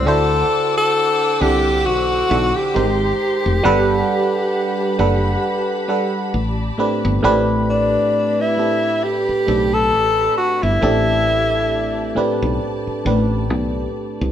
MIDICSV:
0, 0, Header, 1, 6, 480
1, 0, Start_track
1, 0, Tempo, 895522
1, 29, Time_signature, 4, 2, 24, 8
1, 7675, End_track
2, 0, Start_track
2, 0, Title_t, "String section"
2, 0, Program_c, 0, 48
2, 30, Note_on_c, 0, 72, 65
2, 30, Note_on_c, 0, 78, 70
2, 30, Note_on_c, 0, 88, 76
2, 32, Note_on_c, 0, 86, 66
2, 1455, Note_off_c, 0, 78, 0
2, 1455, Note_off_c, 0, 88, 0
2, 1456, Note_off_c, 0, 72, 0
2, 1456, Note_off_c, 0, 86, 0
2, 1466, Note_on_c, 0, 56, 63
2, 1466, Note_on_c, 0, 84, 77
2, 1467, Note_on_c, 0, 79, 60
2, 1467, Note_on_c, 0, 82, 58
2, 1943, Note_off_c, 0, 56, 0
2, 1943, Note_off_c, 0, 79, 0
2, 1943, Note_off_c, 0, 84, 0
2, 1944, Note_off_c, 0, 82, 0
2, 1945, Note_on_c, 0, 81, 62
2, 1946, Note_on_c, 0, 83, 73
2, 1947, Note_on_c, 0, 67, 72
2, 1948, Note_on_c, 0, 78, 70
2, 3373, Note_off_c, 0, 81, 0
2, 3374, Note_off_c, 0, 78, 0
2, 3388, Note_on_c, 0, 74, 63
2, 3391, Note_on_c, 0, 81, 64
2, 3849, Note_off_c, 0, 67, 0
2, 3849, Note_off_c, 0, 83, 0
2, 3859, Note_off_c, 0, 74, 0
2, 3865, Note_off_c, 0, 81, 0
2, 3865, Note_on_c, 0, 83, 66
2, 3866, Note_on_c, 0, 74, 58
2, 3867, Note_on_c, 0, 67, 72
2, 5768, Note_off_c, 0, 83, 0
2, 5792, Note_on_c, 0, 81, 65
2, 7675, Note_off_c, 0, 67, 0
2, 7675, Note_off_c, 0, 74, 0
2, 7675, Note_off_c, 0, 81, 0
2, 7675, End_track
3, 0, Start_track
3, 0, Title_t, "Tenor saxophone"
3, 0, Program_c, 1, 66
3, 39, Note_on_c, 1, 69, 98
3, 412, Note_off_c, 1, 69, 0
3, 415, Note_on_c, 1, 69, 98
3, 757, Note_on_c, 1, 67, 95
3, 765, Note_off_c, 1, 69, 0
3, 996, Note_on_c, 1, 66, 97
3, 1004, Note_off_c, 1, 67, 0
3, 1374, Note_on_c, 1, 67, 79
3, 1382, Note_off_c, 1, 66, 0
3, 3393, Note_off_c, 1, 67, 0
3, 4127, Note_on_c, 1, 62, 86
3, 4506, Note_on_c, 1, 64, 85
3, 4514, Note_off_c, 1, 62, 0
3, 4845, Note_on_c, 1, 67, 86
3, 4853, Note_off_c, 1, 64, 0
3, 5221, Note_on_c, 1, 69, 96
3, 5229, Note_off_c, 1, 67, 0
3, 5556, Note_off_c, 1, 69, 0
3, 5560, Note_on_c, 1, 66, 82
3, 5698, Note_on_c, 1, 64, 83
3, 5706, Note_off_c, 1, 66, 0
3, 6653, Note_off_c, 1, 64, 0
3, 7675, End_track
4, 0, Start_track
4, 0, Title_t, "FM electric piano"
4, 0, Program_c, 2, 5
4, 0, Control_c, 2, 64, 127
4, 32, Note_on_c, 2, 50, 93
4, 34, Note_on_c, 2, 62, 90
4, 35, Control_c, 2, 64, 0
4, 38, Note_on_c, 2, 64, 85
4, 41, Note_on_c, 2, 66, 85
4, 43, Note_on_c, 2, 72, 108
4, 135, Control_c, 2, 64, 127
4, 617, Note_off_c, 2, 50, 0
4, 618, Note_off_c, 2, 62, 0
4, 620, Note_off_c, 2, 64, 0
4, 621, Note_off_c, 2, 66, 0
4, 622, Note_off_c, 2, 72, 0
4, 753, Note_on_c, 2, 50, 77
4, 754, Note_on_c, 2, 62, 70
4, 758, Note_on_c, 2, 64, 63
4, 761, Note_on_c, 2, 78, 72
4, 764, Note_on_c, 2, 69, 84
4, 1147, Note_off_c, 2, 50, 0
4, 1148, Note_off_c, 2, 62, 0
4, 1150, Note_off_c, 2, 64, 0
4, 1151, Note_off_c, 2, 78, 0
4, 1153, Note_off_c, 2, 69, 0
4, 1230, Note_on_c, 2, 50, 62
4, 1235, Note_on_c, 2, 62, 55
4, 1236, Note_on_c, 2, 64, 62
4, 1238, Note_on_c, 2, 66, 52
4, 1242, Note_on_c, 2, 69, 70
4, 1470, Note_off_c, 2, 50, 0
4, 1470, Note_on_c, 2, 56, 74
4, 1472, Note_off_c, 2, 62, 0
4, 1472, Note_on_c, 2, 63, 63
4, 1473, Note_off_c, 2, 64, 0
4, 1474, Note_off_c, 2, 66, 0
4, 1475, Note_on_c, 2, 67, 70
4, 1476, Note_off_c, 2, 69, 0
4, 1477, Control_c, 2, 64, 0
4, 1477, Note_on_c, 2, 70, 64
4, 1481, Note_on_c, 2, 72, 82
4, 1573, Control_c, 2, 64, 127
4, 1868, Note_off_c, 2, 56, 0
4, 1869, Note_off_c, 2, 63, 0
4, 1870, Note_off_c, 2, 67, 0
4, 1872, Note_off_c, 2, 70, 0
4, 1873, Note_off_c, 2, 72, 0
4, 1948, Note_on_c, 2, 55, 124
4, 1950, Note_on_c, 2, 62, 102
4, 1954, Note_on_c, 2, 78, 97
4, 1957, Control_c, 2, 64, 0
4, 1957, Note_on_c, 2, 69, 101
4, 1959, Note_on_c, 2, 71, 126
4, 2065, Control_c, 2, 64, 127
4, 2535, Note_off_c, 2, 55, 0
4, 2536, Note_off_c, 2, 62, 0
4, 2538, Note_off_c, 2, 78, 0
4, 2539, Note_off_c, 2, 69, 0
4, 2540, Note_off_c, 2, 71, 0
4, 2673, Note_on_c, 2, 55, 80
4, 2675, Note_on_c, 2, 62, 80
4, 2678, Note_on_c, 2, 78, 81
4, 2680, Note_on_c, 2, 69, 77
4, 2683, Note_on_c, 2, 71, 95
4, 3067, Note_off_c, 2, 55, 0
4, 3068, Note_off_c, 2, 62, 0
4, 3070, Note_off_c, 2, 78, 0
4, 3071, Note_off_c, 2, 69, 0
4, 3072, Note_off_c, 2, 71, 0
4, 3152, Note_on_c, 2, 55, 80
4, 3154, Note_on_c, 2, 62, 75
4, 3158, Note_on_c, 2, 78, 73
4, 3161, Note_on_c, 2, 69, 71
4, 3163, Note_on_c, 2, 71, 83
4, 3391, Note_off_c, 2, 55, 0
4, 3392, Note_off_c, 2, 62, 0
4, 3394, Note_off_c, 2, 78, 0
4, 3395, Note_off_c, 2, 69, 0
4, 3396, Note_off_c, 2, 71, 0
4, 3397, Control_c, 2, 64, 0
4, 3498, Control_c, 2, 64, 127
4, 3633, Note_on_c, 2, 45, 75
4, 3636, Note_on_c, 2, 57, 73
4, 3638, Note_on_c, 2, 60, 76
4, 3641, Note_on_c, 2, 62, 74
4, 3642, Note_on_c, 2, 67, 67
4, 3644, Note_on_c, 2, 71, 91
4, 3829, Note_off_c, 2, 45, 0
4, 3831, Note_off_c, 2, 57, 0
4, 3832, Note_off_c, 2, 60, 0
4, 3833, Note_off_c, 2, 62, 0
4, 3834, Note_off_c, 2, 67, 0
4, 3835, Note_off_c, 2, 71, 0
4, 3873, Note_on_c, 2, 45, 115
4, 3875, Note_on_c, 2, 57, 95
4, 3876, Control_c, 2, 64, 0
4, 3880, Note_on_c, 2, 60, 98
4, 3880, Note_on_c, 2, 62, 104
4, 3883, Note_on_c, 2, 67, 97
4, 3885, Note_on_c, 2, 71, 121
4, 3975, Control_c, 2, 64, 127
4, 4457, Note_off_c, 2, 45, 0
4, 4458, Note_off_c, 2, 57, 0
4, 4460, Note_off_c, 2, 60, 0
4, 4460, Note_off_c, 2, 62, 0
4, 4462, Note_off_c, 2, 67, 0
4, 4463, Note_off_c, 2, 71, 0
4, 4596, Note_on_c, 2, 45, 67
4, 4599, Note_on_c, 2, 57, 57
4, 4600, Note_on_c, 2, 60, 54
4, 4604, Note_on_c, 2, 62, 59
4, 4605, Note_on_c, 2, 67, 57
4, 4606, Note_on_c, 2, 69, 70
4, 4989, Note_off_c, 2, 45, 0
4, 4990, Note_off_c, 2, 57, 0
4, 4991, Note_off_c, 2, 60, 0
4, 4993, Note_off_c, 2, 62, 0
4, 4993, Note_off_c, 2, 67, 0
4, 4994, Note_off_c, 2, 69, 0
4, 5074, Note_on_c, 2, 45, 61
4, 5075, Note_on_c, 2, 57, 62
4, 5078, Note_on_c, 2, 60, 58
4, 5080, Note_on_c, 2, 62, 58
4, 5083, Note_on_c, 2, 67, 54
4, 5084, Note_on_c, 2, 69, 70
4, 5657, Note_off_c, 2, 45, 0
4, 5658, Note_off_c, 2, 57, 0
4, 5659, Note_off_c, 2, 60, 0
4, 5661, Note_off_c, 2, 62, 0
4, 5662, Note_off_c, 2, 67, 0
4, 5662, Note_off_c, 2, 69, 0
4, 5796, Note_on_c, 2, 45, 89
4, 5798, Note_on_c, 2, 57, 86
4, 5799, Note_on_c, 2, 60, 82
4, 5803, Note_on_c, 2, 62, 84
4, 5804, Note_on_c, 2, 67, 88
4, 5807, Note_on_c, 2, 69, 101
4, 6378, Note_off_c, 2, 45, 0
4, 6379, Note_off_c, 2, 57, 0
4, 6380, Note_off_c, 2, 60, 0
4, 6382, Note_off_c, 2, 62, 0
4, 6383, Note_off_c, 2, 67, 0
4, 6384, Note_off_c, 2, 69, 0
4, 6514, Note_on_c, 2, 45, 87
4, 6516, Note_on_c, 2, 57, 73
4, 6518, Note_on_c, 2, 60, 76
4, 6520, Note_on_c, 2, 62, 84
4, 6523, Note_on_c, 2, 67, 78
4, 6526, Note_on_c, 2, 71, 90
4, 6908, Note_off_c, 2, 45, 0
4, 6909, Note_off_c, 2, 57, 0
4, 6910, Note_off_c, 2, 60, 0
4, 6911, Note_off_c, 2, 62, 0
4, 6912, Note_off_c, 2, 67, 0
4, 6913, Note_off_c, 2, 71, 0
4, 6995, Note_on_c, 2, 45, 72
4, 6997, Note_on_c, 2, 57, 60
4, 7000, Note_on_c, 2, 60, 62
4, 7000, Note_on_c, 2, 62, 63
4, 7004, Note_on_c, 2, 67, 65
4, 7006, Note_on_c, 2, 71, 79
4, 7578, Note_off_c, 2, 45, 0
4, 7579, Note_off_c, 2, 57, 0
4, 7580, Note_off_c, 2, 60, 0
4, 7581, Note_off_c, 2, 62, 0
4, 7583, Note_off_c, 2, 67, 0
4, 7584, Note_off_c, 2, 71, 0
4, 7675, End_track
5, 0, Start_track
5, 0, Title_t, "Fretless electric bass"
5, 0, Program_c, 3, 35
5, 34, Note_on_c, 3, 38, 95
5, 228, Note_off_c, 3, 38, 0
5, 757, Note_on_c, 3, 36, 83
5, 997, Note_off_c, 3, 36, 0
5, 997, Note_on_c, 3, 35, 103
5, 1190, Note_off_c, 3, 35, 0
5, 1238, Note_on_c, 3, 35, 95
5, 1347, Note_off_c, 3, 35, 0
5, 1479, Note_on_c, 3, 32, 93
5, 1671, Note_off_c, 3, 32, 0
5, 1853, Note_on_c, 3, 29, 79
5, 1934, Note_off_c, 3, 29, 0
5, 1956, Note_on_c, 3, 31, 94
5, 2149, Note_off_c, 3, 31, 0
5, 2675, Note_on_c, 3, 30, 79
5, 2868, Note_off_c, 3, 30, 0
5, 3398, Note_on_c, 3, 33, 80
5, 3590, Note_off_c, 3, 33, 0
5, 3777, Note_on_c, 3, 31, 87
5, 3856, Note_off_c, 3, 31, 0
5, 3882, Note_on_c, 3, 33, 88
5, 4268, Note_off_c, 3, 33, 0
5, 5081, Note_on_c, 3, 35, 81
5, 5319, Note_off_c, 3, 35, 0
5, 5319, Note_on_c, 3, 33, 80
5, 5511, Note_off_c, 3, 33, 0
5, 5698, Note_on_c, 3, 31, 79
5, 5777, Note_off_c, 3, 31, 0
5, 5801, Note_on_c, 3, 33, 92
5, 6494, Note_off_c, 3, 33, 0
5, 6660, Note_on_c, 3, 35, 82
5, 6738, Note_off_c, 3, 35, 0
5, 6999, Note_on_c, 3, 33, 94
5, 7238, Note_off_c, 3, 33, 0
5, 7238, Note_on_c, 3, 35, 88
5, 7430, Note_off_c, 3, 35, 0
5, 7618, Note_on_c, 3, 36, 79
5, 7675, Note_off_c, 3, 36, 0
5, 7675, End_track
6, 0, Start_track
6, 0, Title_t, "Muted fretless electric bass strokes"
6, 4979, Note_on_c, 9, 29, 42
6, 5033, Note_off_c, 9, 29, 0
6, 6522, Note_on_c, 9, 29, 42
6, 6576, Note_off_c, 9, 29, 0
6, 6900, Note_on_c, 9, 29, 42
6, 6953, Note_off_c, 9, 29, 0
6, 7675, End_track
0, 0, End_of_file